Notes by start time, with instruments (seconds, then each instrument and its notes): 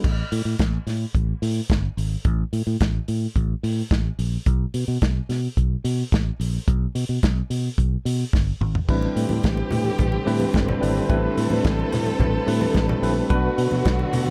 0.04 fingered electric bass A1, kick, crash
0.32 fingered electric bass A2, open hi-hat
0.45 fingered electric bass A2
0.59 fingered electric bass A1, kick, snare, closed hi-hat
0.87 fingered electric bass A2, snare, open hi-hat
1.15 fingered electric bass A1, kick, closed hi-hat
1.42 fingered electric bass A2, open hi-hat
1.70 fingered electric bass G1, kick, snare, closed hi-hat
1.97 fingered electric bass G#1, open hi-hat
2.25 fingered electric bass A1, kick, closed hi-hat
2.53 fingered electric bass A2, open hi-hat
2.67 fingered electric bass A2
2.81 fingered electric bass A1, kick, snare, closed hi-hat
3.08 fingered electric bass A2, open hi-hat
3.36 fingered electric bass A1, kick, closed hi-hat
3.63 fingered electric bass A2, open hi-hat
3.91 fingered electric bass A1, kick, snare, closed hi-hat
4.19 fingered electric bass A#1, open hi-hat
4.46 fingered electric bass B1, kick, closed hi-hat
4.74 fingered electric bass B2, open hi-hat
4.88 fingered electric bass B2
5.02 fingered electric bass B1, kick, snare, closed hi-hat
5.29 fingered electric bass B2, snare, open hi-hat
5.57 fingered electric bass B1, kick, closed hi-hat
5.84 fingered electric bass B2, open hi-hat
6.12 fingered electric bass A1, kick, snare, closed hi-hat
6.40 fingered electric bass A#1, open hi-hat
6.68 fingered electric bass B1, kick, closed hi-hat
6.95 fingered electric bass B2, open hi-hat
7.09 fingered electric bass B2
7.23 fingered electric bass B1, kick, snare, closed hi-hat
7.50 fingered electric bass B2, open hi-hat
7.78 fingered electric bass B1, kick, closed hi-hat
8.05 fingered electric bass B2, open hi-hat
8.33 fingered electric bass G1, kick, snare
8.61 fingered electric bass G#1, mid tom
8.75 floor tom
8.88 fingered electric bass A1, string section D3 A3 C4 G4 B4, tine electric piano G3 C4 D4 E4 B4, kick, splash
9.02 muted conga
9.16 fingered electric bass A2, open hi-hat
9.29 fingered electric bass A2, high conga
9.43 fingered electric bass A1, kick, snare, closed hi-hat, muted conga
9.57 muted conga
9.71 fingered electric bass A2, open hi-hat, low conga
9.85 high conga
9.99 fingered electric bass A1, kick, closed hi-hat, low conga
10.12 muted conga
10.25 fingered electric bass A2, tine electric piano G3 C4 D4 E4 B4, open hi-hat
10.40 high conga
10.54 fingered electric bass G1, kick, snare, closed hi-hat, muted conga, high conga
10.68 muted conga, low conga
10.80 fingered electric bass G#1, tine electric piano G3 C4 D4 E4 B4, open hi-hat
11.09 fingered electric bass A1, tine electric piano G3 C4 D4 E4 B4, string section A4, kick, closed hi-hat, muted conga
11.37 fingered electric bass A2, open hi-hat
11.50 fingered electric bass A2, high conga
11.64 fingered electric bass A1, kick, snare, closed hi-hat, muted conga
11.79 muted conga
11.92 fingered electric bass A2, snare, open hi-hat, low conga
12.06 high conga
12.20 fingered electric bass A1, kick, closed hi-hat, low conga
12.47 fingered electric bass A2, tine electric piano G3 C4 D4 E4 B4, open hi-hat
12.61 high conga
12.74 fingered electric bass A1, kick, snare, closed hi-hat, muted conga, high conga
12.89 muted conga, low conga
13.02 fingered electric bass A#1, tine electric piano G3 C4 D4 E4 B4, open hi-hat
13.29 fingered electric bass B1, string section D3 F#3 F#4, tine electric piano A3 B3 D4 F#4 B4, kick, closed hi-hat, muted conga
13.58 fingered electric bass B2, open hi-hat
13.71 fingered electric bass B2, high conga
13.85 fingered electric bass B1, kick, snare, closed hi-hat, muted conga
13.99 muted conga
14.13 fingered electric bass B2, open hi-hat, low conga
14.26 high conga